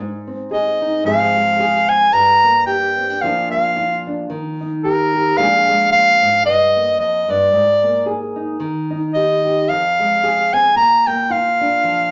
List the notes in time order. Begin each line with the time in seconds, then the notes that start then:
Already playing: G#2
0.27 C4
0.51 G#4 D#5
0.81 D#4
1.04 G#2 F3 G#3 C4 G#4 F5
1.36 G#3
1.59 G#4
1.89 C4 G#5
2.12 G2 A#5
2.44 A#3
2.66 G4 G5
2.98 C4
3.10 D4
3.21 A#2 F3 A#3 D4 F4 F5
3.51 A#3 F5
3.77 F4
4.07 D4
4.30 D#3
4.61 D#4
4.83 G4 A#4
5.14 G4
5.37 A#2 F3 G#3 D4 G#4 F5
5.69 G#3
5.91 A#2 F5
6.22 G#2
6.46 G2 D#5
6.76 A#3
6.99 F2 D#5
7.28 G2 D5
7.52 G#2
7.83 A#3
8.06 G#4
8.36 D#4
8.60 D#3
8.91 D#4
9.14 G4 D#5
9.45 G4
9.68 F2 F5
10.00 G#3
10.24 G#4
10.53 C4 G#5
10.76 A#2 A#5
11.07 A#3 G5
11.30 F4 F5
11.61 D4
11.84 F3